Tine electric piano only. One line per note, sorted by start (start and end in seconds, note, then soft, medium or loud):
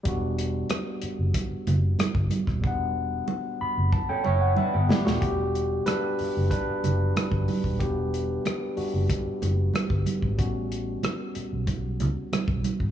0.03 2.59 G3 medium
0.03 2.59 B3 medium
0.03 2.60 D4 medium
0.08 2.61 F#4 medium
2.62 4.90 G3 medium
2.62 5.18 B3 medium
2.62 5.19 D4 medium
2.67 4.40 F#5 medium
3.61 3.91 B5 medium
3.93 4.08 A5 medium
4.09 4.39 G5 medium
4.41 4.56 F#5 medium
4.57 4.87 E5 medium
4.89 5.05 G3 medium
4.89 5.06 E4 medium
4.89 5.20 D5 medium
5.05 5.21 A3 medium
5.05 5.22 F#4 medium
5.21 5.65 G3 soft
5.21 5.83 B3 medium
5.21 5.65 D4 soft
5.21 5.65 F#4 medium
5.21 5.88 G4 medium
5.86 6.48 D4 medium
5.86 6.49 B4 medium
6.50 7.77 D4 medium
6.50 7.84 B4 medium
7.79 8.75 G3 soft
7.79 9.06 B3 medium
7.79 8.75 D4 soft
7.79 8.76 F#4 soft
7.79 9.05 G4 medium
8.76 9.06 G3 soft
8.76 9.06 D4 soft
8.76 9.06 F#4 soft
10.38 12.91 G3 soft
10.38 12.91 B3 soft
10.38 12.91 C#4 soft
10.38 12.91 F#4 soft